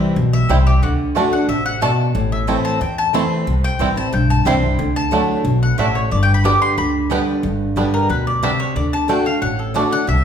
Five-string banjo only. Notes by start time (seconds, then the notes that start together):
0.50 G3 C4 E4
1.16 A3 D4
1.82 A3 D4
2.48 A3 C4 E4
3.15 A3 C4 E4
3.81 G3 C4 E4
4.47 G3 C4 E4
5.13 A3 D4
5.79 A3 D4
6.45 G3 B3 D4
7.11 G3 B3 D4
7.77 G3 B3 D4
8.43 G3 B3 D4
9.09 A3 D4
9.76 A3 D4